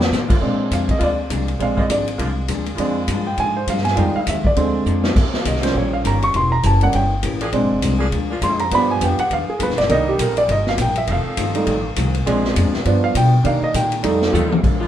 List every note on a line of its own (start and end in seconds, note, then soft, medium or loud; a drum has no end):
0.00 0.11 F2 loud
0.00 snare medium
0.11 0.31 F2 medium
0.11 0.40 A2 loud
0.11 0.31 D#3 medium
0.11 0.32 A3 medium
0.11 0.32 C4 medium
0.11 snare medium
0.11 hi-hat pedal medium
0.28 0.37 D3 medium
0.28 0.36 G#3 medium
0.28 0.36 A#3 medium
0.28 0.36 F4 medium
0.28 kick medium
0.28 crash medium
0.41 0.60 A#2 medium
0.41 0.70 A#2 medium
0.41 0.61 F3 soft
0.41 1.56 G#3 soft
0.41 0.62 G#3 medium
0.41 1.56 C4 soft
0.41 1.56 D4 medium
0.41 0.62 D4 medium
0.41 kick soft
0.71 1.00 F2 medium
0.71 0.90 A#2 medium
0.71 0.90 F3 medium
0.71 0.90 G#3 medium
0.71 0.91 D4 medium
0.71 0.89 F5 medium
0.71 kick soft
0.71 hi-hat pedal medium
0.71 ride medium
0.89 1.01 D#5 medium
0.89 kick medium
0.89 ride soft
0.98 1.29 D2 medium
0.98 1.19 A#2 soft
0.98 1.11 D3 medium
0.98 1.19 F3 soft
0.98 1.11 G#3 medium
0.98 1.20 G#3 soft
0.98 1.11 A#3 medium
0.98 1.11 F4 medium
0.98 kick soft
0.98 ride medium
1.02 1.20 D4 soft
1.02 1.46 D5 medium
1.29 1.59 C2 loud
1.29 1.48 A#2 medium
1.29 1.49 F3 medium
1.29 1.49 G#3 medium
1.29 1.50 D4 medium
1.29 kick soft
1.29 hi-hat pedal medium
1.29 ride medium
1.48 ride soft
1.59 1.89 A#1 medium
1.59 1.78 A#2 soft
1.59 1.79 F3 soft
1.59 2.74 G#3 medium
1.59 1.79 G#3 medium
1.59 2.75 C4 soft
1.59 2.75 D4 medium
1.59 1.80 D4 medium
1.59 1.78 F5 medium
1.59 kick soft
1.59 ride medium
1.75 1.84 D3 medium
1.75 1.84 G#3 medium
1.75 1.84 A#3 medium
1.75 1.84 F4 medium
1.75 kick medium
1.79 1.90 D#5 medium
1.88 2.18 G#1 medium
1.88 2.08 A#2 medium
1.88 2.08 F3 medium
1.88 2.09 G#3 medium
1.88 2.09 D4 medium
1.88 2.35 D5 medium
1.88 kick soft
1.88 hi-hat pedal medium
1.88 ride medium
2.08 ride soft
2.18 2.48 C2 medium
2.18 2.37 A#2 soft
2.18 2.30 D3 medium
2.18 2.38 F3 soft
2.18 2.30 G#3 medium
2.18 2.38 G#3 soft
2.18 2.31 A#3 medium
2.18 2.39 D4 medium
2.18 2.31 F4 medium
2.18 kick soft
2.18 ride medium
2.48 2.77 D2 loud
2.48 2.67 A#2 medium
2.48 2.67 F3 medium
2.48 2.68 G#3 medium
2.48 2.68 D4 medium
2.48 kick soft
2.48 hi-hat pedal medium
2.48 ride medium
2.66 ride soft
2.75 3.07 F2 medium
2.75 2.97 A#2 medium
2.75 3.59 D3 medium
2.75 2.97 F3 soft
2.75 3.59 G#3 medium
2.75 3.00 G#3 medium
2.75 3.59 A#3 medium
2.75 3.00 C4 soft
2.75 3.59 F4 medium
2.75 kick soft
2.75 ride medium
2.80 2.98 G#3 medium
2.80 3.00 D4 medium
2.80 2.98 D4 medium
3.08 3.37 G2 medium
3.08 3.27 A#2 medium
3.08 3.27 F3 medium
3.08 3.28 G#3 medium
3.08 3.28 D4 medium
3.08 kick soft
3.08 hi-hat pedal medium
3.08 ride medium
3.27 3.38 G5 medium
3.37 3.66 G#2 medium
3.37 3.56 A#2 soft
3.37 3.57 F3 soft
3.37 3.57 G#3 soft
3.37 3.58 D4 medium
3.37 3.56 G#5 loud
3.37 kick soft
3.37 ride medium
3.57 3.68 C5 medium
3.67 3.96 G2 loud
3.67 3.86 A#2 medium
3.67 3.86 F3 medium
3.67 3.87 G#3 medium
3.67 3.87 D4 medium
3.67 3.86 F5 medium
3.67 kick soft
3.67 hi-hat pedal medium
3.67 ride medium
3.77 snare soft
3.85 3.96 G#5 medium
3.85 snare soft
3.85 ride soft
3.94 4.16 F2 soft
3.94 4.14 F2 medium
3.94 4.40 D#3 medium
3.94 4.16 D#3 medium
3.94 4.18 G3 medium
3.94 4.18 G#3 soft
3.94 4.16 G#3 medium
3.94 4.39 C4 medium
3.94 4.19 D#4 medium
3.94 4.40 F4 medium
3.94 kick soft
3.94 ride medium
3.99 4.17 C4 soft
3.99 4.15 G5 medium
4.15 4.27 F5 medium
4.15 muted upright bass stroke soft
4.27 4.56 D#2 medium
4.27 4.45 F2 medium
4.27 4.46 D#3 medium
4.27 4.46 G#3 medium
4.27 4.47 C4 medium
4.27 4.45 E5 medium
4.27 kick soft
4.27 hi-hat pedal medium
4.27 ride medium
4.45 5.13 D5 medium
4.45 kick medium
4.56 4.85 D2 medium
4.56 4.75 A#2 medium
4.56 5.01 D3 soft
4.56 4.75 F3 medium
4.56 5.01 G#3 soft
4.56 4.76 G#3 medium
4.56 5.02 C4 medium
4.56 4.76 D4 medium
4.56 kick soft
4.56 ride medium
4.86 5.15 F2 medium
4.86 5.05 A#2 medium
4.86 5.05 F3 medium
4.86 5.05 G#3 medium
4.86 5.05 D4 medium
4.86 hi-hat pedal medium
5.03 5.12 D#3 medium
5.03 5.12 A#3 medium
5.03 5.11 C#4 medium
5.03 5.12 D#4 loud
5.03 snare medium
5.15 5.44 D#2 medium
5.15 5.34 D#3 medium
5.15 5.35 A#3 medium
5.15 5.35 C#4 medium
5.15 5.36 G4 medium
5.15 kick medium
5.15 crash medium
5.34 snare medium
5.44 5.74 C2 medium
5.44 5.63 D#3 medium
5.44 5.64 A#3 medium
5.44 5.64 C#4 medium
5.44 5.64 G4 medium
5.44 5.63 D#5 medium
5.44 kick soft
5.44 hi-hat pedal medium
5.44 ride medium
5.55 snare soft
5.62 6.30 F3 soft
5.62 6.31 G3 soft
5.62 6.31 C#4 medium
5.62 5.75 C5 medium
5.62 snare soft
5.62 ride medium
5.73 6.04 A#1 medium
5.73 5.93 D#3 soft
5.73 5.94 A#3 soft
5.73 5.94 C#4 medium
5.73 5.95 G4 medium
5.73 kick soft
5.77 5.93 C#5 medium
5.93 6.05 F5 medium
6.04 6.33 G1 loud
6.04 6.23 D#3 medium
6.04 6.34 D#3 medium
6.04 6.34 A#3 medium
6.04 6.23 A#3 medium
6.04 6.34 C#4 medium
6.04 6.23 C#4 medium
6.04 6.34 G4 medium
6.04 6.24 G4 medium
6.04 6.23 A#5 medium
6.04 kick soft
6.04 hi-hat pedal medium
6.04 ride medium
6.22 6.34 C#6 medium
6.22 ride soft
6.33 6.63 E1 medium
6.33 6.52 E3 medium
6.33 6.53 A#3 medium
6.33 6.53 C#4 soft
6.33 6.54 G4 medium
6.33 6.52 C6 medium
6.33 kick soft
6.33 ride medium
6.52 6.63 A#5 medium
6.63 6.92 F#1 loud
6.63 6.82 E3 medium
6.63 6.83 A#3 medium
6.63 6.83 C#4 medium
6.63 6.83 G4 medium
6.63 6.82 A5 medium
6.63 kick soft
6.63 hi-hat pedal medium
6.63 ride medium
6.81 7.00 G3 soft
6.81 7.00 A#3 soft
6.81 7.00 C#4 soft
6.81 6.94 F#5 medium
6.81 ride soft
6.92 7.22 G1 medium
6.92 7.12 E3 soft
6.92 7.12 A#3 soft
6.92 7.13 C#4 soft
6.92 7.13 G4 soft
6.92 7.79 G5 medium
6.92 kick soft
6.92 ride medium
7.23 7.52 A1 loud
7.23 7.42 E3 medium
7.23 7.42 A#3 medium
7.23 7.42 C#4 medium
7.23 7.43 G4 medium
7.23 kick soft
7.23 hi-hat pedal medium
7.23 ride medium
7.41 7.49 F3 loud
7.41 7.49 A#3 medium
7.41 7.49 D4 medium
7.41 7.49 G#4 loud
7.41 ride soft
7.52 7.61 A#1 medium
7.52 7.71 A#2 medium
7.52 7.72 F3 medium
7.52 7.98 G#3 medium
7.52 7.72 G#3 medium
7.52 7.98 C4 soft
7.52 7.98 D4 medium
7.52 7.73 D4 medium
7.52 kick soft
7.52 ride medium
7.61 7.71 G#1 medium
7.72 7.81 F1 medium
7.82 8.11 C2 loud
7.82 8.01 A#2 medium
7.82 8.01 F3 medium
7.82 8.02 G#3 medium
7.82 8.02 D4 medium
7.82 kick soft
7.82 hi-hat pedal medium
7.82 ride medium
7.99 8.07 F3 medium
7.99 8.08 A#3 medium
7.99 8.07 D4 medium
7.99 8.07 G#4 loud
8.11 8.41 D2 loud
8.11 8.30 A#2 medium
8.11 8.31 F3 medium
8.11 8.31 G#3 medium
8.11 8.32 D4 medium
8.11 kick soft
8.11 ride medium
8.30 8.69 F3 medium
8.30 8.69 A#3 medium
8.30 8.69 D4 medium
8.30 8.69 F4 loud
8.41 8.70 F2 loud
8.41 8.60 A#2 medium
8.41 8.61 F3 medium
8.41 8.61 G#3 medium
8.41 8.61 D4 medium
8.41 8.60 C6 medium
8.41 kick soft
8.41 hi-hat pedal medium
8.41 ride medium
8.59 8.71 A#5 medium
8.59 ride soft
8.71 8.90 G2 soft
8.71 9.00 G2 medium
8.71 9.53 F3 medium
8.71 9.16 F3 medium
8.71 8.91 F3 medium
8.71 9.53 B3 medium
8.71 9.17 B3 medium
8.71 8.91 B3 medium
8.71 9.53 D4 medium
8.71 9.17 D4 medium
8.71 8.92 D4 medium
8.71 9.53 G4 loud
8.71 8.90 B5 loud
8.71 kick soft
8.71 ride medium
8.91 9.02 G#5 medium
9.01 9.17 F2 loud
9.01 9.20 G2 medium
9.01 9.20 F3 medium
9.01 9.20 B3 medium
9.01 9.20 D4 medium
9.01 9.19 G5 medium
9.01 kick soft
9.01 hi-hat pedal medium
9.01 ride medium
9.18 9.31 F#5 medium
9.18 muted upright bass stroke soft
9.18 ride soft
9.29 9.47 D#2 medium
9.29 9.49 G2 soft
9.29 9.49 F3 medium
9.29 9.50 B3 medium
9.29 9.50 D4 soft
9.29 9.49 F5 medium
9.29 kick soft
9.29 ride medium
9.48 9.60 G#4 medium
9.48 muted upright bass stroke soft
9.58 9.70 D2 loud
9.58 9.79 G2 medium
9.58 9.79 F3 medium
9.58 9.79 B3 medium
9.58 9.80 D4 medium
9.58 9.60 A#4 soft
9.58 kick soft
9.58 hi-hat pedal medium
9.58 ride medium
9.63 9.79 B4 medium
9.69 9.78 B1 medium
9.69 snare soft
9.78 9.88 G1 medium
9.78 9.89 D5 medium
9.78 snare soft
9.78 ride soft
9.89 10.18 C2 medium
9.89 10.08 C3 soft
9.89 10.11 D#3 medium
9.89 10.71 G3 medium
9.89 10.08 G3 medium
9.89 10.11 A#3 soft
9.89 10.09 A#3 soft
9.89 10.71 C4 medium
9.89 10.11 D4 medium
9.89 10.71 D#4 medium
9.89 10.09 D#4 medium
9.89 10.71 A#4 loud
9.89 10.08 D#5 medium
9.89 kick soft
9.89 ride medium
10.08 10.19 G4 medium
10.19 10.47 A#1 loud
10.19 10.38 C3 medium
10.19 10.38 G3 medium
10.19 10.39 A#3 medium
10.19 10.39 D#4 medium
10.19 10.38 A#4 medium
10.19 kick soft
10.19 hi-hat pedal medium
10.19 ride medium
10.37 10.49 D5 medium
10.37 ride medium
10.48 10.77 G1 loud
10.48 10.68 C3 soft
10.48 10.68 G3 soft
10.48 10.68 A#3 medium
10.48 10.69 D#4 medium
10.48 10.67 D#5 medium
10.48 kick soft
10.48 ride medium
10.67 10.79 F5 medium
10.67 snare soft
10.78 11.07 A#1 loud
10.78 10.97 C3 medium
10.78 10.97 G3 medium
10.78 10.97 A#3 medium
10.78 10.98 D#4 medium
10.78 10.97 G5 medium
10.78 kick soft
10.78 hi-hat pedal medium
10.78 ride medium
10.96 11.08 E5 medium
10.96 ride medium
11.07 11.24 F1 medium
11.07 11.26 F2 medium
11.07 11.27 D#3 soft
11.07 11.90 F3 medium
11.07 11.27 A3 soft
11.07 11.90 C4 medium
11.07 11.28 C4 medium
11.07 11.90 D#4 medium
11.07 11.90 A4 medium
11.07 kick soft
11.07 ride medium
11.12 11.95 F5 medium
11.25 muted upright bass stroke soft
11.37 11.66 G1 medium
11.37 11.56 F2 medium
11.37 11.56 D#3 medium
11.37 11.57 A3 medium
11.37 11.57 C4 medium
11.37 kick soft
11.37 hi-hat pedal medium
11.37 ride medium
11.55 11.73 G3 soft
11.55 11.73 A3 soft
11.55 11.74 D#4 medium
11.55 ride medium
11.66 11.96 A1 medium
11.66 11.85 F2 medium
11.66 11.86 D#3 medium
11.66 11.86 A3 medium
11.66 11.87 C4 medium
11.66 kick soft
11.66 ride medium
11.96 12.25 C2 loud
11.96 12.15 F2 medium
11.96 12.16 D#3 medium
11.96 12.16 A3 medium
11.96 12.16 C4 medium
11.96 kick soft
11.96 hi-hat pedal medium
11.96 ride medium
12.15 ride soft
12.26 12.55 A#1 medium
12.26 12.45 A#2 medium
12.26 12.86 F3 medium
12.26 12.46 F3 medium
12.26 12.71 G#3 medium
12.26 12.46 G#3 medium
12.26 12.85 A#3 medium
12.26 12.71 C4 medium
12.26 12.86 D4 medium
12.26 12.72 D4 medium
12.26 12.47 D4 medium
12.26 12.86 G#4 loud
12.26 kick soft
12.26 ride medium
12.45 snare soft
12.56 12.66 F2 loud
12.56 12.75 A#2 medium
12.56 12.76 F3 medium
12.56 12.76 G#3 medium
12.56 12.76 D4 medium
12.56 kick soft
12.56 hi-hat pedal medium
12.56 ride medium
12.66 12.74 D2 medium
12.74 12.84 A#1 medium
12.74 snare soft
12.85 13.04 G2 medium
12.85 13.14 G2 medium
12.85 13.30 F3 medium
12.85 13.05 F3 medium
12.85 13.31 B3 medium
12.85 13.05 B3 medium
12.85 13.31 D4 medium
12.85 13.05 D4 medium
12.85 kick soft
12.85 ride medium
13.04 13.15 F5 medium
13.15 13.34 G2 medium
13.15 13.44 B2 loud
13.15 13.34 F3 medium
13.15 13.34 B3 medium
13.15 13.35 D4 medium
13.15 13.44 G5 medium
13.15 kick soft
13.15 hi-hat pedal medium
13.15 ride medium
13.44 13.63 C3 medium
13.44 13.61 C3 medium
13.44 14.01 D#3 medium
13.44 14.00 A#3 soft
13.44 13.63 A#3 medium
13.44 14.01 D4 medium
13.44 13.64 D#4 medium
13.44 13.64 G4 medium
13.44 13.63 F5 medium
13.44 kick soft
13.44 ride medium
13.62 13.75 D#5 medium
13.62 muted upright bass stroke soft
13.74 14.03 A#2 loud
13.74 13.93 C3 medium
13.74 13.93 A#3 medium
13.74 13.93 D#4 medium
13.74 13.94 G4 medium
13.74 14.19 G5 medium
13.74 kick soft
13.74 hi-hat pedal medium
13.74 ride medium
13.92 ride medium
14.03 14.33 F2 medium
14.03 14.22 F3 medium
14.03 14.48 G3 medium
14.03 14.49 A3 medium
14.03 14.23 C4 medium
14.03 14.49 D#4 medium
14.03 14.23 D#4 medium
14.03 14.24 A4 medium
14.03 kick soft
14.03 ride medium
14.22 snare medium
14.32 14.62 D#2 loud
14.32 14.63 D#3 medium
14.32 14.52 F3 medium
14.32 14.63 A3 medium
14.32 14.63 C4 medium
14.32 14.53 C4 medium
14.32 14.53 D#4 medium
14.32 14.62 F4 loud
14.32 14.53 A4 medium
14.32 hi-hat pedal medium
14.32 mid tom medium
14.52 mid tom medium
14.63 14.88 A#1 medium
14.63 14.82 A#2 medium
14.63 14.83 F3 medium
14.63 14.83 G#3 medium
14.63 14.84 D4 medium
14.63 kick medium
14.63 crash medium
14.80 14.88 D3 medium
14.80 14.88 G#3 medium
14.80 14.88 A#3 medium
14.80 14.88 F4 loud